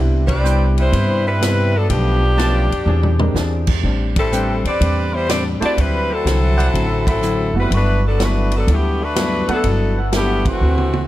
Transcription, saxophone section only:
0.27 0.73 C4 medium
0.27 0.73 G4 medium
0.27 0.73 B4 medium
0.27 0.73 D5 medium
0.79 1.23 G3 medium
0.79 1.23 E4 medium
0.79 1.23 B4 medium
0.79 1.23 C5 medium
1.26 1.74 G3 medium
1.26 1.74 C4 medium
1.26 1.75 E4 medium
1.26 1.74 B4 loud
1.76 1.90 F#3 medium
1.76 1.90 B3 medium
1.76 1.90 D4 medium
1.76 1.91 A4 medium
1.90 2.83 F3 medium
1.90 2.83 B3 medium
1.90 3.31 D4 medium
1.90 3.31 G4 medium
4.19 4.62 G3 medium
4.19 4.62 C4 medium
4.19 4.62 E4 medium
4.19 4.62 A4 medium
4.67 5.11 C4 medium
4.67 5.12 G4 medium
4.67 5.11 B4 medium
4.67 5.11 D5 medium
5.14 5.29 G3 medium
5.14 5.29 B3 medium
5.14 5.29 E4 medium
5.14 5.29 C5 medium
5.29 5.44 C4 medium
5.29 5.44 G4 medium
5.29 5.44 B4 medium
5.29 5.44 D5 medium
5.64 5.78 C4 medium
5.64 5.78 G4 medium
5.64 5.78 B4 medium
5.64 5.78 D5 medium
5.79 6.11 G3 medium
5.79 6.11 C4 medium
5.79 6.11 E4 medium
5.79 6.11 B4 medium
6.12 7.08 F#3 medium
6.12 7.07 C4 medium
6.12 7.07 E4 medium
6.12 7.08 A4 loud
7.08 7.53 F#3 medium
7.08 7.52 C4 medium
7.08 7.52 E4 medium
7.08 7.53 A4 medium
7.59 7.72 G3 medium
7.59 7.72 C4 medium
7.59 7.72 E4 medium
7.59 7.72 B4 medium
7.74 8.03 A3 medium
7.74 8.03 D4 medium
7.74 8.03 F#4 medium
7.74 8.03 B4 medium
8.08 8.21 F#3 medium
8.08 8.21 B3 medium
8.08 8.22 D4 medium
8.08 8.22 A4 medium
8.24 8.54 A3 medium
8.24 8.54 D4 medium
8.24 8.54 F#4 medium
8.24 8.54 B4 medium
8.56 8.69 F#3 medium
8.56 8.69 B3 medium
8.56 8.69 D4 medium
8.56 8.69 A4 medium
8.72 9.02 D3 medium
8.72 9.02 A3 medium
8.72 9.03 B3 medium
8.72 9.03 G4 medium
9.03 9.50 A3 medium
9.03 9.50 D4 medium
9.03 9.50 F#4 medium
9.03 9.50 B4 medium
9.53 9.96 F#3 medium
9.53 9.96 B3 medium
9.53 9.96 D4 medium
9.53 9.96 A4 medium
10.15 10.44 D3 medium
10.15 10.45 A3 medium
10.15 10.45 B3 medium
10.15 10.45 G4 medium
10.48 11.07 E3 medium
10.48 11.07 A3 medium
10.48 11.07 C4 medium
10.48 11.07 F#4 medium

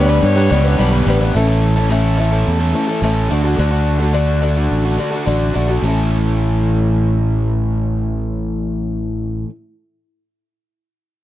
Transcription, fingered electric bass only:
0.00 0.19 D2 loud
0.23 0.48 G2 loud
0.51 0.76 C#2 loud
0.79 1.04 B1 medium
1.07 1.32 A1 medium
1.35 2.43 A1 loud
2.47 2.72 E2 medium
3.02 3.27 A1 medium
3.31 3.56 D2 medium
3.58 4.67 D2 loud
4.71 4.96 A1 medium
5.27 5.53 A1 medium
5.56 5.81 A#1 medium
5.82 9.44 A1 medium

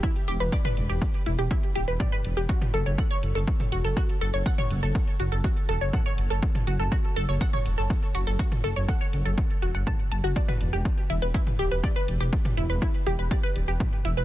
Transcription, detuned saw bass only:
0.28 0.37 E1 medium
0.40 0.49 E1 medium
0.77 0.86 E1 medium
0.89 0.98 E1 medium
1.26 1.35 E1 medium
1.39 1.47 E1 medium
1.75 1.84 D1 medium
1.88 1.97 E1 medium
2.25 2.33 E1 medium
2.37 2.46 E1 medium
2.74 2.83 F#1 medium
2.86 2.95 F#1 medium
3.23 3.32 F#1 medium
3.35 3.44 F#1 medium
3.72 3.81 E1 loud
3.84 3.93 F#1 medium
4.21 4.30 F#1 medium
4.34 4.42 F#1 medium
4.71 4.79 F#1 medium
4.83 4.92 F#1 medium
5.20 5.29 F#1 loud
5.32 5.41 F#1 medium
5.69 5.78 E1 loud
5.81 5.90 F#1 medium
6.18 6.27 F#1 medium
6.30 6.39 F#1 medium
6.67 6.76 F#1 medium
6.80 6.88 F#1 medium
7.16 7.25 F#1 medium
7.29 7.38 F#1 medium
7.66 7.74 E1 medium
7.78 7.87 F#1 medium
8.15 8.24 F#1 medium
8.27 8.36 F#1 medium
8.64 8.73 F#1 medium
8.76 8.85 F#1 medium
9.13 9.22 F#1 medium
9.25 9.34 F#1 medium
9.62 9.71 E1 medium
9.75 9.83 F#1 medium
10.11 10.20 F#1 medium
10.24 10.33 F#1 medium
10.61 10.70 E1 medium
10.73 10.82 E1 medium
11.10 11.19 E1 medium
11.22 11.31 E1 medium
11.59 11.68 D1 loud
11.71 11.80 E1 medium
12.08 12.17 E1 loud
12.21 12.29 E1 medium
12.57 12.66 E1 medium
12.70 12.79 E1 medium
13.06 13.15 E1 loud
13.19 13.28 E1 medium
13.56 13.65 D1 loud
13.68 13.77 E1 medium
14.05 14.14 E1 medium
14.17 14.25 E1 medium

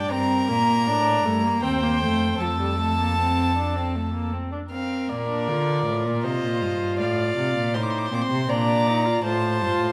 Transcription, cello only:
0.00 0.11 G2 medium
0.11 0.51 G2 medium
0.49 0.88 A#2 medium
0.86 1.24 A2 medium
1.25 1.62 G2 medium
1.63 2.03 D#2 medium
2.01 2.39 F2 medium
2.40 4.29 F2 medium
5.09 5.49 A#2 medium
5.48 5.85 D3 medium
5.86 6.06 A2 medium
6.04 6.26 A#2 medium
6.24 6.42 C3 medium
6.43 6.63 A#2 medium
6.62 7.01 G2 medium
6.99 7.36 A2 medium
7.37 7.55 C3 medium
7.56 7.76 A#2 medium
7.75 8.11 A2 medium
8.12 8.19 A#2 medium
8.30 8.48 C3 medium
8.49 9.22 A#2 medium
9.24 9.63 A2 medium
9.61 9.79 G2 medium
9.80 9.92 A2 medium

